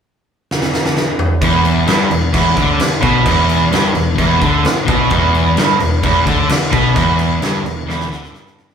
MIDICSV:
0, 0, Header, 1, 8, 480
1, 0, Start_track
1, 0, Key_signature, 1, "minor"
1, 0, Tempo, 460476
1, 1491, Time_signature, 4, 2, 24, 8
1, 9117, End_track
2, 0, Start_track
2, 0, Title_t, "Overdriven electric guitar"
2, 0, Program_c, 0, 29
2, 4371, Note_on_c, 0, 40, 115
2, 4604, Note_off_c, 0, 40, 0
2, 5105, Note_on_c, 0, 47, 93
2, 5331, Note_off_c, 0, 47, 0
2, 8473, Note_on_c, 0, 50, 102
2, 8696, Note_off_c, 0, 50, 0
2, 8705, Note_on_c, 0, 43, 107
2, 9117, Note_off_c, 0, 43, 0
2, 9117, End_track
3, 0, Start_track
3, 0, Title_t, "Distorted electric guitar"
3, 0, Program_c, 1, 30
3, 1484, Note_on_c, 1, 40, 114
3, 1960, Note_off_c, 1, 40, 0
3, 1968, Note_on_c, 1, 43, 98
3, 2195, Note_off_c, 1, 43, 0
3, 2199, Note_on_c, 1, 40, 71
3, 2397, Note_off_c, 1, 40, 0
3, 2425, Note_on_c, 1, 40, 111
3, 2670, Note_off_c, 1, 40, 0
3, 2676, Note_on_c, 1, 50, 101
3, 2915, Note_off_c, 1, 50, 0
3, 3136, Note_on_c, 1, 47, 111
3, 3379, Note_on_c, 1, 40, 107
3, 3386, Note_off_c, 1, 47, 0
3, 3856, Note_off_c, 1, 40, 0
3, 3861, Note_on_c, 1, 43, 98
3, 4100, Note_off_c, 1, 43, 0
3, 4104, Note_on_c, 1, 40, 67
3, 4309, Note_off_c, 1, 40, 0
3, 4327, Note_on_c, 1, 40, 111
3, 4582, Note_off_c, 1, 40, 0
3, 4585, Note_on_c, 1, 50, 107
3, 4831, Note_off_c, 1, 50, 0
3, 5058, Note_on_c, 1, 47, 102
3, 5308, Note_off_c, 1, 47, 0
3, 5309, Note_on_c, 1, 40, 104
3, 5794, Note_off_c, 1, 40, 0
3, 5798, Note_on_c, 1, 43, 97
3, 6039, Note_off_c, 1, 43, 0
3, 6047, Note_on_c, 1, 40, 71
3, 6242, Note_off_c, 1, 40, 0
3, 6282, Note_on_c, 1, 40, 122
3, 6521, Note_off_c, 1, 40, 0
3, 6527, Note_on_c, 1, 50, 110
3, 6763, Note_off_c, 1, 50, 0
3, 6995, Note_on_c, 1, 47, 104
3, 7238, Note_off_c, 1, 47, 0
3, 7252, Note_on_c, 1, 40, 114
3, 7722, Note_off_c, 1, 40, 0
3, 7726, Note_on_c, 1, 43, 101
3, 7956, Note_off_c, 1, 43, 0
3, 7960, Note_on_c, 1, 40, 69
3, 8160, Note_off_c, 1, 40, 0
3, 8195, Note_on_c, 1, 40, 106
3, 8428, Note_on_c, 1, 50, 105
3, 8437, Note_off_c, 1, 40, 0
3, 8659, Note_on_c, 1, 43, 108
3, 8674, Note_off_c, 1, 50, 0
3, 9117, Note_off_c, 1, 43, 0
3, 9117, End_track
4, 0, Start_track
4, 0, Title_t, "Picked electric bass"
4, 0, Program_c, 2, 34
4, 1479, Note_on_c, 2, 28, 99
4, 1930, Note_off_c, 2, 28, 0
4, 1958, Note_on_c, 2, 31, 91
4, 2186, Note_off_c, 2, 31, 0
4, 2197, Note_on_c, 2, 28, 80
4, 2426, Note_off_c, 2, 28, 0
4, 2443, Note_on_c, 2, 28, 94
4, 2670, Note_off_c, 2, 28, 0
4, 2676, Note_on_c, 2, 38, 90
4, 2905, Note_off_c, 2, 38, 0
4, 3153, Note_on_c, 2, 35, 97
4, 3384, Note_off_c, 2, 35, 0
4, 3394, Note_on_c, 2, 28, 106
4, 3848, Note_off_c, 2, 28, 0
4, 3905, Note_on_c, 2, 31, 93
4, 4122, Note_off_c, 2, 31, 0
4, 4141, Note_on_c, 2, 28, 86
4, 4358, Note_off_c, 2, 28, 0
4, 4364, Note_on_c, 2, 28, 105
4, 4591, Note_off_c, 2, 28, 0
4, 4602, Note_on_c, 2, 38, 97
4, 4830, Note_off_c, 2, 38, 0
4, 5087, Note_on_c, 2, 35, 90
4, 5313, Note_off_c, 2, 35, 0
4, 5330, Note_on_c, 2, 28, 100
4, 5778, Note_off_c, 2, 28, 0
4, 5822, Note_on_c, 2, 31, 105
4, 6041, Note_off_c, 2, 31, 0
4, 6070, Note_on_c, 2, 28, 86
4, 6282, Note_off_c, 2, 28, 0
4, 6289, Note_on_c, 2, 28, 96
4, 6514, Note_off_c, 2, 28, 0
4, 6533, Note_on_c, 2, 38, 90
4, 6757, Note_off_c, 2, 38, 0
4, 7014, Note_on_c, 2, 35, 101
4, 7237, Note_off_c, 2, 35, 0
4, 7251, Note_on_c, 2, 28, 99
4, 7699, Note_off_c, 2, 28, 0
4, 7731, Note_on_c, 2, 31, 90
4, 7956, Note_off_c, 2, 31, 0
4, 7963, Note_on_c, 2, 28, 83
4, 8192, Note_off_c, 2, 28, 0
4, 8207, Note_on_c, 2, 28, 100
4, 8434, Note_off_c, 2, 28, 0
4, 8438, Note_on_c, 2, 38, 98
4, 8669, Note_off_c, 2, 38, 0
4, 8677, Note_on_c, 2, 31, 100
4, 9117, Note_off_c, 2, 31, 0
4, 9117, End_track
5, 0, Start_track
5, 0, Title_t, "Muted distorted electric guitar strokes"
5, 2907, Note_on_c, 9, 29, 62
5, 3011, Note_off_c, 9, 29, 0
5, 4819, Note_on_c, 9, 29, 65
5, 4923, Note_off_c, 9, 29, 0
5, 6762, Note_on_c, 9, 29, 63
5, 6866, Note_off_c, 9, 29, 0
5, 9117, End_track
6, 0, Start_track
6, 0, Title_t, "Muted overdriven electric guitar strokes"
6, 2922, Note_on_c, 9, 29, 55
6, 3027, Note_off_c, 9, 29, 0
6, 4872, Note_on_c, 9, 29, 60
6, 4976, Note_off_c, 9, 29, 0
6, 6776, Note_on_c, 9, 29, 61
6, 6880, Note_off_c, 9, 29, 0
6, 9117, End_track
7, 0, Start_track
7, 0, Title_t, "Muted picked electric bass strokes"
7, 2922, Note_on_c, 9, 29, 47
7, 3026, Note_off_c, 9, 29, 0
7, 4844, Note_on_c, 9, 29, 45
7, 4948, Note_off_c, 9, 29, 0
7, 6795, Note_on_c, 9, 29, 47
7, 6899, Note_off_c, 9, 29, 0
7, 9117, End_track
8, 0, Start_track
8, 0, Title_t, "Drums"
8, 533, Note_on_c, 9, 38, 70
8, 638, Note_off_c, 9, 38, 0
8, 647, Note_on_c, 9, 38, 81
8, 751, Note_off_c, 9, 38, 0
8, 768, Note_on_c, 9, 38, 79
8, 872, Note_off_c, 9, 38, 0
8, 891, Note_on_c, 9, 38, 83
8, 996, Note_off_c, 9, 38, 0
8, 1008, Note_on_c, 9, 38, 100
8, 1112, Note_off_c, 9, 38, 0
8, 1242, Note_on_c, 9, 45, 93
8, 1346, Note_off_c, 9, 45, 0
8, 1477, Note_on_c, 9, 36, 105
8, 1482, Note_on_c, 9, 49, 87
8, 1581, Note_off_c, 9, 36, 0
8, 1586, Note_off_c, 9, 49, 0
8, 1719, Note_on_c, 9, 49, 67
8, 1824, Note_off_c, 9, 49, 0
8, 1955, Note_on_c, 9, 49, 84
8, 1967, Note_on_c, 9, 38, 109
8, 2059, Note_off_c, 9, 49, 0
8, 2071, Note_off_c, 9, 38, 0
8, 2198, Note_on_c, 9, 49, 63
8, 2302, Note_off_c, 9, 49, 0
8, 2438, Note_on_c, 9, 36, 107
8, 2440, Note_on_c, 9, 49, 87
8, 2542, Note_off_c, 9, 36, 0
8, 2545, Note_off_c, 9, 49, 0
8, 2678, Note_on_c, 9, 36, 107
8, 2678, Note_on_c, 9, 49, 64
8, 2782, Note_off_c, 9, 36, 0
8, 2782, Note_off_c, 9, 49, 0
8, 2916, Note_on_c, 9, 49, 91
8, 2929, Note_on_c, 9, 38, 127
8, 3020, Note_off_c, 9, 49, 0
8, 3033, Note_off_c, 9, 38, 0
8, 3155, Note_on_c, 9, 49, 66
8, 3156, Note_on_c, 9, 36, 113
8, 3259, Note_off_c, 9, 49, 0
8, 3260, Note_off_c, 9, 36, 0
8, 3396, Note_on_c, 9, 36, 109
8, 3399, Note_on_c, 9, 49, 90
8, 3501, Note_off_c, 9, 36, 0
8, 3503, Note_off_c, 9, 49, 0
8, 3640, Note_on_c, 9, 49, 68
8, 3745, Note_off_c, 9, 49, 0
8, 3883, Note_on_c, 9, 49, 75
8, 3896, Note_on_c, 9, 38, 104
8, 3987, Note_off_c, 9, 49, 0
8, 4000, Note_off_c, 9, 38, 0
8, 4118, Note_on_c, 9, 49, 61
8, 4222, Note_off_c, 9, 49, 0
8, 4362, Note_on_c, 9, 36, 100
8, 4365, Note_on_c, 9, 49, 77
8, 4466, Note_off_c, 9, 36, 0
8, 4469, Note_off_c, 9, 49, 0
8, 4602, Note_on_c, 9, 49, 60
8, 4603, Note_on_c, 9, 36, 106
8, 4706, Note_off_c, 9, 49, 0
8, 4707, Note_off_c, 9, 36, 0
8, 4844, Note_on_c, 9, 49, 79
8, 4857, Note_on_c, 9, 38, 127
8, 4948, Note_off_c, 9, 49, 0
8, 4961, Note_off_c, 9, 38, 0
8, 5084, Note_on_c, 9, 49, 60
8, 5088, Note_on_c, 9, 36, 118
8, 5188, Note_off_c, 9, 49, 0
8, 5192, Note_off_c, 9, 36, 0
8, 5319, Note_on_c, 9, 49, 76
8, 5327, Note_on_c, 9, 36, 104
8, 5424, Note_off_c, 9, 49, 0
8, 5432, Note_off_c, 9, 36, 0
8, 5573, Note_on_c, 9, 49, 58
8, 5677, Note_off_c, 9, 49, 0
8, 5806, Note_on_c, 9, 49, 83
8, 5818, Note_on_c, 9, 38, 102
8, 5910, Note_off_c, 9, 49, 0
8, 5923, Note_off_c, 9, 38, 0
8, 6048, Note_on_c, 9, 49, 69
8, 6152, Note_off_c, 9, 49, 0
8, 6288, Note_on_c, 9, 49, 79
8, 6292, Note_on_c, 9, 36, 108
8, 6392, Note_off_c, 9, 49, 0
8, 6397, Note_off_c, 9, 36, 0
8, 6534, Note_on_c, 9, 36, 111
8, 6534, Note_on_c, 9, 49, 69
8, 6639, Note_off_c, 9, 36, 0
8, 6639, Note_off_c, 9, 49, 0
8, 6769, Note_on_c, 9, 49, 99
8, 6782, Note_on_c, 9, 38, 123
8, 6874, Note_off_c, 9, 49, 0
8, 6886, Note_off_c, 9, 38, 0
8, 7011, Note_on_c, 9, 49, 68
8, 7014, Note_on_c, 9, 36, 104
8, 7115, Note_off_c, 9, 49, 0
8, 7118, Note_off_c, 9, 36, 0
8, 7252, Note_on_c, 9, 49, 82
8, 7255, Note_on_c, 9, 36, 114
8, 7357, Note_off_c, 9, 49, 0
8, 7360, Note_off_c, 9, 36, 0
8, 7493, Note_on_c, 9, 49, 64
8, 7597, Note_off_c, 9, 49, 0
8, 7736, Note_on_c, 9, 49, 82
8, 7749, Note_on_c, 9, 38, 111
8, 7841, Note_off_c, 9, 49, 0
8, 7853, Note_off_c, 9, 38, 0
8, 7984, Note_on_c, 9, 49, 63
8, 8088, Note_off_c, 9, 49, 0
8, 8231, Note_on_c, 9, 38, 66
8, 8336, Note_off_c, 9, 38, 0
8, 8346, Note_on_c, 9, 38, 56
8, 8450, Note_off_c, 9, 38, 0
8, 8463, Note_on_c, 9, 38, 78
8, 8567, Note_off_c, 9, 38, 0
8, 8584, Note_on_c, 9, 38, 69
8, 8689, Note_off_c, 9, 38, 0
8, 8700, Note_on_c, 9, 38, 90
8, 8805, Note_off_c, 9, 38, 0
8, 8828, Note_on_c, 9, 38, 78
8, 8932, Note_off_c, 9, 38, 0
8, 8949, Note_on_c, 9, 38, 106
8, 9053, Note_off_c, 9, 38, 0
8, 9062, Note_on_c, 9, 38, 92
8, 9117, Note_off_c, 9, 38, 0
8, 9117, End_track
0, 0, End_of_file